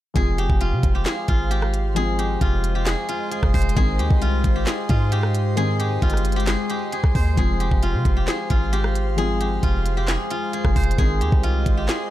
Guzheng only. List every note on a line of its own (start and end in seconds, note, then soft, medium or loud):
0.16 0.44 G#4 loud
0.38 0.94 G4 medium
0.61 1.28 F4 medium
0.95 1.12 G4 medium
1.06 1.57 G#4 medium
1.29 2.41 F4 medium
1.51 2.02 G4 medium
1.96 2.25 G#4 loud
2.19 2.75 G4 medium
2.41 3.08 F4 medium
2.75 2.92 G4 medium
2.86 3.31 G#4 medium
3.09 4.21 F4 medium
3.31 3.76 G#4 medium
3.54 5.52 C5 medium
3.77 4.05 G#4 loud
3.99 4.55 G4 medium
4.22 4.89 F4 medium
4.56 4.73 G4 medium
4.67 5.18 G#4 medium
4.90 6.02 F4 medium
5.12 5.63 G4 medium
5.57 5.86 G#4 loud
5.80 6.36 G4 medium
6.02 7.82 F4 medium
6.36 6.53 G4 medium
6.47 6.76 G#4 medium
6.70 6.99 G4 medium
6.93 7.37 G#4 medium
7.15 9.13 C5 medium
7.38 7.66 G#4 loud
7.60 8.16 G4 medium
7.83 8.50 F4 medium
8.17 8.34 G4 medium
8.28 8.79 G#4 medium
8.51 9.63 F4 medium
8.73 9.24 G4 medium
9.18 9.47 G#4 loud
9.41 9.97 G4 medium
9.63 10.30 F4 medium
9.97 10.14 G4 medium
10.08 10.53 G#4 loud
10.31 11.43 F4 medium
10.53 10.98 G#4 medium
10.76 12.10 C5 medium
10.98 11.27 G#4 loud
11.21 11.77 G4 medium
11.43 12.10 F4 medium
11.77 11.95 G4 medium
11.89 12.10 G#4 medium